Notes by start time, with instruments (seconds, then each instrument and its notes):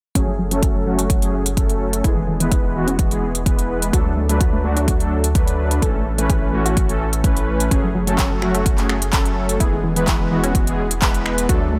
0.15 analog synth bass F#1, supersaw synth F#3 A3 C#4 G#4, synth pluck C#4, kick, closed hi-hat
0.28 synth pluck F#3
0.39 synth pluck F#3
0.51 supersaw synth F#3 A3 C#4 A4, synth pluck F#3, closed hi-hat
0.62 synth pluck C#4, kick, closed hi-hat
0.75 synth pluck F#3
0.86 synth pluck F#3, supersaw synth F#3 A3 C#4 F#4
0.99 synth pluck A3, closed hi-hat
1.10 kick, closed hi-hat
1.22 supersaw synth F#3 A3 C#4 G#4, closed hi-hat
1.46 closed hi-hat
1.57 supersaw synth F#3 A3 C#4 A4, kick, closed hi-hat
1.70 closed hi-hat
1.93 closed hi-hat
2.04 analog synth bass E1, supersaw synth E3 G#3 B3 G#4, synth pluck E4, kick, closed hi-hat
2.17 synth pluck E3
2.28 synth pluck E3
2.40 synth pluck E3, supersaw synth E3 G#3 B3 B4, closed hi-hat
2.52 synth pluck E4, kick, closed hi-hat
2.64 synth pluck E3
2.75 synth pluck E3, supersaw synth E3 G#3 B3 F#4
2.87 synth pluck C#4, closed hi-hat
2.99 kick, closed hi-hat
3.11 supersaw synth E3 G#3 B3 G#4, closed hi-hat
3.35 closed hi-hat
3.46 supersaw synth E3 G#3 B3 B4, kick, closed hi-hat
3.59 closed hi-hat
3.82 closed hi-hat
3.93 analog synth bass D2, supersaw synth F#3 A3 D4 A4, synth pluck F#4, kick, closed hi-hat
4.06 synth pluck A3
4.17 synth pluck A3
4.29 supersaw synth F#3 A3 D4 B4, synth pluck A3, closed hi-hat
4.41 synth pluck F#4, kick, closed hi-hat
4.53 synth pluck A3
4.64 supersaw synth F#3 A3 D4 F#4, synth pluck A3
4.77 synth pluck D4, closed hi-hat
4.88 kick, closed hi-hat
5.00 supersaw synth F#3 A3 D4 A4, closed hi-hat
5.24 closed hi-hat
5.35 supersaw synth F#3 A3 D4 B4, kick, closed hi-hat
5.48 closed hi-hat
5.71 closed hi-hat
5.82 analog synth bass A1, supersaw synth E3 A3 C#4 A4, synth pluck A4, kick, closed hi-hat
5.95 synth pluck A3
6.06 synth pluck A3
6.18 supersaw synth E3 A3 C#4 B4, synth pluck A3, closed hi-hat
6.29 synth pluck G#4, kick, closed hi-hat
6.42 synth pluck A3
6.53 supersaw synth E3 A3 C#4 F#4, synth pluck A3
6.65 synth pluck F#4, closed hi-hat
6.77 kick, closed hi-hat
6.89 supersaw synth E3 A3 C#4 A4, closed hi-hat
7.13 closed hi-hat
7.24 supersaw synth E3 A3 C#4 B4, kick, closed hi-hat
7.37 closed hi-hat
7.60 closed hi-hat
7.71 analog synth bass F#1, supersaw synth F#3 A3 C#4 G#4, synth pluck C#4, kick, closed hi-hat
7.84 synth pluck F#3
7.95 synth pluck F#3
8.07 synth pluck F#3, supersaw synth F#3 A3 C#4 A4, closed hi-hat
8.18 synth pluck C#4, kick, clap, closed hi-hat
8.31 synth pluck F#3
8.42 synth pluck F#3, supersaw synth F#3 A3 C#4 F#4, finger snap
8.55 synth pluck A3, closed hi-hat
8.66 kick, closed hi-hat
8.78 supersaw synth F#3 A3 C#4 G#4, clap, closed hi-hat
8.89 finger snap
9.02 closed hi-hat
9.13 supersaw synth F#3 A3 C#4 A4, kick, clap, closed hi-hat
9.25 closed hi-hat
9.49 closed hi-hat
9.60 analog synth bass E1, supersaw synth E3 G#3 B3 G#4, synth pluck E4, kick, closed hi-hat
9.73 synth pluck E3
9.84 synth pluck E3
9.96 synth pluck E3, supersaw synth E3 G#3 B3 B4, closed hi-hat
10.07 synth pluck E4, kick, clap, closed hi-hat
10.20 synth pluck E3
10.31 synth pluck E3, supersaw synth E3 G#3 B3 F#4
10.44 synth pluck C#4, closed hi-hat
10.55 kick, closed hi-hat
10.67 supersaw synth E3 G#3 B3 G#4, closed hi-hat
10.91 closed hi-hat
11.02 supersaw synth E3 G#3 B3 B4, kick, clap, closed hi-hat
11.14 closed hi-hat
11.26 finger snap
11.38 closed hi-hat
11.49 analog synth bass D2, supersaw synth F#3 A3 D4 A4, synth pluck F#4, kick, closed hi-hat
11.62 synth pluck A3
11.73 synth pluck A3